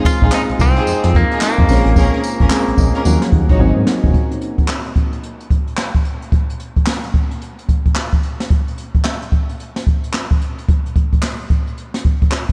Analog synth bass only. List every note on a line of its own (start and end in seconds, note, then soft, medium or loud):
0.22 0.29 A#1 medium
0.49 0.53 C2 soft
0.60 0.79 C2 medium
0.87 0.94 F2 soft
1.04 1.23 F2 loud
1.59 1.66 F2 medium
1.69 1.81 A#1 loud
1.86 1.93 A1 loud
1.96 2.08 A#1 loud
2.40 2.48 G#1 medium
2.68 2.72 A#1 medium
2.78 2.90 A#1 medium
3.05 3.17 D#2 loud
3.32 3.44 D#2 loud
3.50 3.57 A#1 medium
3.60 3.72 G#1 loud
3.77 3.84 G#2 loud
4.04 4.11 E1 loud